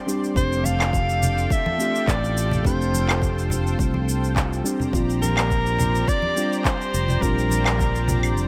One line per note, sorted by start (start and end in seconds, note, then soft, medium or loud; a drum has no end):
0.00 0.07 G3 medium
0.00 0.07 C4 medium
0.00 0.07 D4 medium
0.00 0.39 F4 medium
0.00 0.33 G4 medium
0.00 0.32 C5 medium
0.00 2.62 D5 medium
0.00 0.34 C6 medium
0.07 0.33 G3 medium
0.07 0.33 C4 medium
0.07 0.33 D4 medium
0.07 0.33 G4 medium
0.07 shaker medium
0.24 shaker soft
0.34 1.46 F1 medium
0.34 1.75 A3 medium
0.34 1.76 C4 medium
0.34 1.76 D4 medium
0.34 4.62 F4 medium
0.34 1.77 G4 medium
0.34 4.62 A4 medium
0.34 0.67 C5 medium
0.34 4.62 G5 medium
0.34 kick loud
0.34 shaker soft
0.53 shaker soft
0.65 1.54 F5 loud
0.65 high conga medium
0.65 shaker medium
0.80 clap medium
0.80 claves medium
0.80 shaker soft
0.93 kick loud
0.93 shaker soft
1.09 shaker soft
1.23 low conga medium
1.23 shaker medium
1.38 shaker soft
1.50 2.11 E5 loud
1.50 kick loud
1.50 shaker soft
1.66 high conga medium
1.78 1.94 A3 medium
1.78 1.95 C4 medium
1.78 1.95 D4 medium
1.78 1.95 G4 medium
1.78 shaker medium
1.95 shaker soft
2.08 2.60 A1 loud
2.08 2.66 D5 medium
2.08 kick medium
2.08 clap medium
2.08 shaker soft
2.24 shaker soft
2.37 shaker medium
2.51 low conga medium
2.51 shaker soft
2.63 3.74 F1 loud
2.63 4.61 A3 medium
2.63 4.61 C4 medium
2.63 4.62 D4 medium
2.63 4.62 G4 medium
2.63 4.63 C5 medium
2.63 3.48 C5 medium
2.63 kick medium
2.63 shaker soft
2.82 shaker soft
2.94 high conga medium
2.94 shaker medium
3.09 clap medium
3.09 claves medium
3.09 shaker soft
3.22 kick loud
3.22 shaker soft
3.38 shaker soft
3.50 low conga medium
3.50 shaker medium
3.67 shaker soft
3.79 4.60 C2 medium
3.79 kick loud
3.79 shaker soft
3.94 high conga medium
4.09 shaker medium
4.24 shaker soft
4.36 kick medium
4.36 clap medium
4.36 shaker soft
4.53 shaker soft
4.64 4.90 G3 medium
4.64 4.90 C4 medium
4.64 4.90 D4 medium
4.64 8.48 G4 medium
4.64 4.91 G4 medium
4.64 8.48 C5 medium
4.64 8.48 D5 medium
4.64 8.48 A#5 medium
4.64 shaker medium
4.80 low conga medium
4.80 shaker soft
4.91 6.03 A#1 medium
4.91 6.32 G3 medium
4.91 6.33 C4 medium
4.91 6.33 D4 medium
4.91 6.34 F4 medium
4.91 kick medium
4.91 shaker soft
5.10 shaker soft
5.22 6.09 A#4 loud
5.22 high conga medium
5.22 shaker medium
5.37 clap medium
5.37 claves medium
5.37 shaker soft
5.50 kick medium
5.50 shaker soft
5.66 shaker soft
5.79 low conga medium
5.79 shaker medium
5.95 shaker soft
6.08 6.59 D5 loud
6.08 kick medium
6.08 shaker soft
6.22 high conga medium
6.36 6.52 G3 medium
6.36 6.52 C4 medium
6.36 6.52 D4 medium
6.36 6.53 F4 medium
6.36 shaker medium
6.53 shaker soft
6.60 6.66 D5 medium
6.64 7.23 C5 loud
6.64 kick loud
6.64 clap medium
6.64 shaker soft
6.81 shaker soft
6.94 7.16 F1 medium
6.94 shaker medium
7.08 low conga medium
7.08 shaker soft
7.20 8.37 A#1 medium
7.20 8.48 G3 medium
7.20 8.48 C4 medium
7.20 8.48 D4 medium
7.20 8.48 F4 loud
7.20 8.36 A#4 medium
7.20 kick medium
7.20 shaker soft
7.39 shaker soft
7.50 high conga medium
7.50 shaker medium
7.66 clap medium
7.66 claves medium
7.66 shaker soft
7.79 kick loud
7.79 shaker soft
7.95 shaker soft
8.08 low conga loud
8.08 shaker medium
8.23 claves medium
8.23 shaker soft
8.37 8.48 F1 medium
8.37 shaker soft